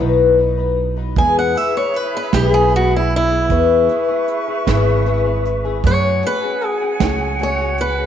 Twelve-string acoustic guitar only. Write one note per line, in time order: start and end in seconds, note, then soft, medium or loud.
0.00 0.39 B2 medium
0.00 0.39 D#3 medium
0.00 0.37 F#3 medium
0.00 0.38 B3 medium
0.00 0.38 D#4 medium
0.00 0.39 B4 medium
0.39 0.58 B3 medium
0.39 0.57 D#4 medium
0.39 0.56 B4 medium
0.58 0.98 F#3 soft
0.58 0.97 B3 soft
0.58 0.96 D#4 soft
0.58 0.95 B4 soft
0.97 1.17 F#3 soft
0.97 1.16 B3 soft
0.97 1.17 D#4 soft
0.97 1.16 B4 soft
1.17 1.56 E3 medium
1.17 1.54 G#3 medium
1.17 1.55 B3 medium
1.17 1.56 E4 medium
1.17 1.56 G#4 medium
1.55 1.75 G#3 soft
1.55 1.75 B3 soft
1.55 1.74 E4 soft
1.55 1.73 G#4 medium
1.74 2.15 B3 soft
1.74 2.14 E4 soft
1.74 2.13 G#4 medium
2.14 2.32 B3 soft
2.14 2.33 E4 soft
2.14 2.33 G#4 soft
2.32 2.72 E3 medium
2.32 2.71 G#3 medium
2.32 2.72 B3 medium
2.32 2.72 E4 medium
2.32 2.73 G#4 medium
2.72 2.92 G#3 medium
2.72 2.92 B3 medium
2.72 2.91 E4 medium
2.72 2.90 G#4 medium
2.91 3.31 B3 soft
2.91 3.30 E4 soft
2.91 3.29 G#4 medium
3.30 3.49 B3 soft
3.30 3.50 G#4 soft
3.50 3.89 C#3 medium
3.50 3.89 E3 medium
3.50 3.87 B3 medium
3.50 3.89 E4 medium
3.50 3.90 G#4 medium
3.50 3.89 B4 medium
3.89 4.09 B3 medium
3.89 4.08 E4 medium
3.89 4.07 G#4 medium
3.89 4.08 B4 medium
4.08 4.48 B3 soft
4.08 4.48 E4 medium
4.08 4.46 G#4 medium
4.08 4.47 B4 medium
4.47 4.67 B3 soft
4.47 4.67 E4 soft
4.47 4.67 G#4 medium
4.47 4.67 B4 soft
4.67 5.06 C#3 medium
4.67 5.06 E3 medium
4.67 5.04 B3 medium
4.67 5.05 E4 medium
4.67 5.07 G#4 medium
4.67 5.06 B4 medium
5.05 5.25 B3 medium
5.05 5.25 E4 medium
5.05 5.23 G#4 medium
5.05 5.24 B4 medium
5.24 5.65 B3 soft
5.24 5.65 E4 soft
5.24 5.63 G#4 medium
5.24 5.64 B4 soft
5.64 5.84 B3 soft
5.64 5.84 E4 soft
5.64 5.84 G#4 medium
5.64 5.84 B4 soft
5.84 6.23 F#3 medium
5.84 6.21 A3 medium
5.84 6.22 C#4 medium
5.84 6.23 F#4 medium
5.84 6.23 G#4 medium
6.22 6.42 A3 medium
6.22 6.43 C#4 medium
6.22 6.42 F#4 medium
6.22 6.41 G#4 medium
6.42 6.82 C#4 soft
6.42 6.81 F#4 medium
6.42 6.80 G#4 medium
6.81 7.00 C#4 soft
6.81 7.00 F#4 soft
6.81 7.00 G#4 medium
7.00 7.40 F#3 medium
7.00 7.37 A3 medium
7.00 7.39 C#4 medium
7.00 7.39 F#4 medium
7.00 7.40 G#4 medium
7.39 7.59 A3 medium
7.39 7.60 C#4 medium
7.39 7.59 F#4 medium
7.39 7.58 G#4 medium
7.59 7.99 C#4 soft
7.59 7.98 F#4 soft
7.59 7.97 G#4 medium
7.98 8.06 C#4 soft
7.98 8.06 F#4 soft
7.98 8.06 G#4 medium